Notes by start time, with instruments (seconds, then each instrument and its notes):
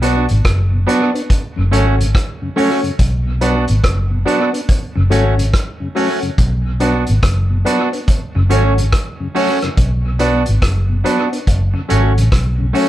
Already playing: fingered electric bass B1
0.02 tonewheel organ F#3 B3 D4, clean electric guitar B3 D4 F#4, upright piano D4 F#4 B4 D5, closed hi-hat
0.29 fingered electric bass G#1, tonewheel organ B2, closed hi-hat
0.45 fingered electric bass F#1, kick, cross-stick, closed hi-hat
0.72 tonewheel organ B2
0.87 tonewheel organ F#3 B3 D4, clean electric guitar B3 D4 F#4, upright piano D4 F#4 B4 D5, closed hi-hat
1.14 tonewheel organ B3 D4, upright piano B4 D5, closed hi-hat
1.30 kick, closed hi-hat
1.56 fingered electric bass F#1, tonewheel organ F#2 C#3
1.71 fingered electric bass G#1, tonewheel organ F#3 A3 C#4, clean electric guitar A3 C#4 F#4, upright piano C#4 F#4 A4 C#5, closed hi-hat
1.98 tonewheel organ F#2 C#3, muted clean electric guitar stroke, closed hi-hat
2.15 kick, cross-stick, closed hi-hat
2.41 tonewheel organ F#2 C#3
2.56 tonewheel organ F#3 A3 C#4, clean electric guitar A3 C#4 F#4, upright piano C#4 F#4 A4 C#5, open hi-hat
2.83 tonewheel organ F#2 C#3, closed hi-hat
2.99 fingered electric bass B1, kick, closed hi-hat
3.26 tonewheel organ B2
3.41 tonewheel organ F#3 B3 D4, clean electric guitar B3 D4 F#4, upright piano D4 F#4 B4 D5, closed hi-hat
3.68 fingered electric bass G#1, tonewheel organ B2, closed hi-hat
3.84 fingered electric bass F#1, kick, cross-stick, closed hi-hat
4.11 tonewheel organ B2
4.25 tonewheel organ F#3 B3 D4, clean electric guitar B3 D4 F#4, upright piano D4 F#4 B4 D5, closed hi-hat
4.53 tonewheel organ B3 D4, upright piano B4 D5, closed hi-hat
4.69 kick, closed hi-hat
4.95 fingered electric bass F#1, tonewheel organ F#2 C#3, muted clean electric guitar stroke
5.10 fingered electric bass G#1, tonewheel organ F#3 A3 C#4, clean electric guitar A3 C#4 F#4, upright piano C#4 F#4 A4 C#5, closed hi-hat
5.38 tonewheel organ F#2 C#3, closed hi-hat
5.54 kick, cross-stick, closed hi-hat
5.80 tonewheel organ F#2 C#3
5.95 tonewheel organ F#3 A3 C#4, clean electric guitar A3 C#4 F#4, upright piano C#4 F#4 A4 C#5, open hi-hat
6.22 tonewheel organ F#2 C#3, closed hi-hat
6.38 fingered electric bass B1, kick, closed hi-hat
6.65 tonewheel organ B2
6.80 tonewheel organ F#3 B3 D4, clean electric guitar B3 D4 F#4, upright piano D4 F#4 B4 D5, closed hi-hat
7.07 fingered electric bass G#1, tonewheel organ B2, closed hi-hat
7.23 fingered electric bass F#1, kick, cross-stick, closed hi-hat
7.50 tonewheel organ B2
7.65 tonewheel organ F#3 B3 D4, clean electric guitar B3 D4 F#4, upright piano D4 F#4 B4 D5, closed hi-hat
7.92 tonewheel organ B3 D4, upright piano B4 D5, closed hi-hat
8.08 kick, closed hi-hat
8.35 fingered electric bass F#1, tonewheel organ F#2 C#3, muted clean electric guitar stroke
8.49 fingered electric bass G#1, tonewheel organ F#3 A3 C#4, clean electric guitar A3 C#4 F#4, upright piano C#4 F#4 A4 C#5, closed hi-hat
8.78 tonewheel organ F#2 C#3, closed hi-hat
8.93 kick, cross-stick, closed hi-hat
9.20 tonewheel organ F#2 C#3
9.34 tonewheel organ F#3 A3 C#4, clean electric guitar A3 C#4 F#4, upright piano C#4 F#4 A4 C#5, open hi-hat
9.62 tonewheel organ F#2 C#3, cross-stick, closed hi-hat
9.77 fingered electric bass B1, kick, closed hi-hat
10.05 tonewheel organ B2
10.19 tonewheel organ F#3 B3 D4, clean electric guitar B3 D4 F#4, upright piano D4 F#4 B4 D5, closed hi-hat
10.46 fingered electric bass G#1, tonewheel organ B2, closed hi-hat
10.62 fingered electric bass F#1, kick, cross-stick, closed hi-hat
10.89 tonewheel organ B2
11.04 tonewheel organ F#3 B3 D4, clean electric guitar B3 D4 F#4, upright piano D4 F#4 B4 D5, closed hi-hat
11.31 tonewheel organ B3 D4, upright piano B4 D5, closed hi-hat
11.47 fingered electric bass F#1, kick, closed hi-hat
11.74 tonewheel organ F#2 C#3, muted clean electric guitar stroke
11.88 fingered electric bass G#1, tonewheel organ F#3 A3 C#4, clean electric guitar A3 C#4 F#4, upright piano C#4 F#4 A4 C#5, closed hi-hat
12.16 fingered electric bass A1, tonewheel organ F#2 C#3, closed hi-hat
12.32 fingered electric bass B1, kick, cross-stick, closed hi-hat
12.58 tonewheel organ F#2 C#3
12.73 tonewheel organ F#3 A3 C#4, clean electric guitar A3 C#4 F#4, upright piano C#4 F#4 A4 C#5, open hi-hat